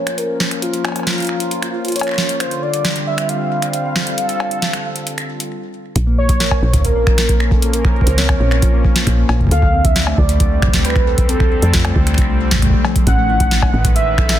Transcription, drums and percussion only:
0.07 finger snap, closed hi-hat
0.18 closed hi-hat
0.40 snare
0.51 finger snap, closed hi-hat
0.62 closed hi-hat
0.73 closed hi-hat
0.85 finger snap, cowbell
0.88 cowbell
0.92 closed hi-hat, cowbell
0.96 cowbell
0.99 cowbell
1.03 snare, closed hi-hat, cowbell
1.18 closed hi-hat
1.20 closed hi-hat
1.22 closed hi-hat
1.25 closed hi-hat
1.27 finger snap, closed hi-hat
1.40 closed hi-hat
1.51 closed hi-hat
1.62 finger snap, closed hi-hat
1.85 closed hi-hat
1.88 closed hi-hat
1.92 closed hi-hat
1.96 closed hi-hat
1.99 closed hi-hat, cowbell
2.03 finger snap, closed hi-hat
2.09 finger snap
2.11 finger snap
2.14 finger snap
2.16 finger snap, snare
2.29 closed hi-hat
2.40 finger snap, closed hi-hat
2.51 closed hi-hat
2.74 closed hi-hat
2.85 finger snap, snare, closed hi-hat
2.96 closed hi-hat
3.18 finger snap, closed hi-hat
3.29 closed hi-hat
3.62 finger snap, closed hi-hat
3.73 closed hi-hat
3.96 finger snap, snare
4.07 closed hi-hat
4.18 closed hi-hat
4.29 closed hi-hat
4.40 finger snap, cowbell
4.51 closed hi-hat
4.62 snare, closed hi-hat
4.73 finger snap, closed hi-hat
4.96 closed hi-hat
5.07 closed hi-hat
5.18 finger snap, closed hi-hat
5.40 closed hi-hat
5.96 kick, closed hi-hat
6.29 kick, closed hi-hat
6.40 snare, closed hi-hat
6.51 kick, cowbell
6.73 kick, closed hi-hat
6.76 kick
6.79 kick
6.82 kick, closed hi-hat
6.85 kick
6.87 kick
6.90 kick
6.93 kick
7.07 finger snap, kick
7.18 finger snap, snare, closed hi-hat
7.29 kick, closed hi-hat
7.40 finger snap
7.51 kick
7.62 closed hi-hat
7.73 closed hi-hat
7.85 finger snap, kick
8.01 kick
8.07 closed hi-hat
8.18 snare, closed hi-hat
8.29 finger snap, kick, cowbell
8.51 finger snap
8.62 kick, closed hi-hat
8.85 kick
8.96 snare, closed hi-hat
9.07 finger snap, kick, closed hi-hat
9.29 cowbell
9.40 kick
9.42 kick
9.45 kick
9.47 kick
9.49 kick, closed hi-hat
9.62 kick
9.85 kick, closed hi-hat
9.96 snare, closed hi-hat
10.07 cowbell
10.18 kick
10.29 closed hi-hat
10.40 kick, closed hi-hat
10.62 finger snap, kick
10.68 kick
10.73 finger snap, kick, snare, closed hi-hat
10.79 finger snap, kick
10.85 finger snap, closed hi-hat
10.90 finger snap
10.96 finger snap, kick
11.18 kick, closed hi-hat
11.29 closed hi-hat
11.40 finger snap, kick
11.62 closed hi-hat
11.73 kick, snare, closed hi-hat
11.85 finger snap, cowbell
11.96 kick
12.07 finger snap, closed hi-hat
12.14 finger snap, kick, closed hi-hat
12.22 finger snap
12.51 kick, snare, closed hi-hat
12.55 kick
12.59 finger snap, kick, closed hi-hat
12.62 kick
12.66 kick
12.70 kick
12.73 kick
12.85 cowbell
12.96 kick, closed hi-hat
13.07 kick, closed hi-hat
13.40 kick, closed hi-hat
13.51 snare, closed hi-hat
13.62 kick, cowbell
13.85 kick, closed hi-hat
13.96 closed hi-hat
14.18 finger snap, kick
14.29 finger snap, snare, closed hi-hat

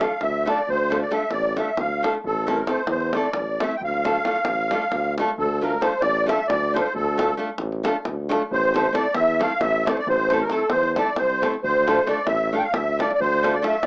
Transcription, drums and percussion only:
0.01 davul high
0.21 davul high, davul low
0.48 davul high
0.59 davul high
0.69 davul low
0.92 davul high
1.12 davul high
1.31 davul high
1.44 davul high
1.57 davul high
1.77 davul high, davul low
2.04 davul high
2.15 davul high
2.24 davul low
2.48 davul high
2.67 davul high
2.87 davul high
3.00 davul high
3.13 davul high
3.33 davul high, davul low
3.60 davul high
3.71 davul high
3.81 davul low
3.94 davul high
4.05 davul high
4.16 davul high
4.25 davul high
4.36 davul high
4.45 davul high
4.71 davul high
4.82 davul high
4.92 davul high, davul low
5.04 davul high
5.18 davul high
5.28 davul high
5.38 davul low
5.82 davul high
6.02 davul high
6.16 davul high
6.29 davul high
6.50 davul high, davul low
6.76 davul high
6.86 davul high
6.95 davul low
7.19 davul high
7.58 davul high
7.72 davul high
7.85 davul high
8.05 davul high, davul low
8.31 davul high
8.42 davul high
8.51 davul low
8.76 davul high
8.95 davul high
9.14 davul high
9.27 davul high
9.41 davul high
9.61 davul high, davul low
9.87 davul high
9.97 davul high
10.07 davul low
10.20 davul high
10.30 davul high
10.40 davul high
10.50 davul high
10.59 davul high
10.70 davul high
10.83 davul high
10.96 davul high
11.07 davul high
11.16 davul high
11.30 davul high
11.43 davul high
11.54 davul high
11.64 davul low
11.88 davul high
12.07 davul high
12.27 davul high
12.40 davul high
12.74 davul high, davul low
13.00 davul high
13.11 davul high
13.21 davul low
13.44 davul high
13.64 davul high
13.83 davul high

